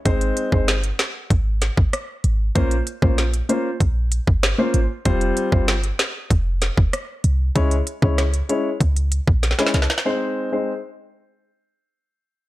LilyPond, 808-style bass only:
\new Staff \with { instrumentName = "808-style bass" } { \clef bass \time 4/4 \key aes \major \tempo 4 = 96 aes,,8 r16 g,,8. r8 aes,,8. aes,,16 r8 aes,,8 | bes,,8 r16 bes,,8. r8 bes,,8. g,,8 r16 aes,,16 r16 | f,,8 r16 g,,8. r8 f,,8. f,,16 r8 c,8 | des,8 r16 des,8. r8 des,8. bes,,8 r16 c,16 r16 |
r1 | }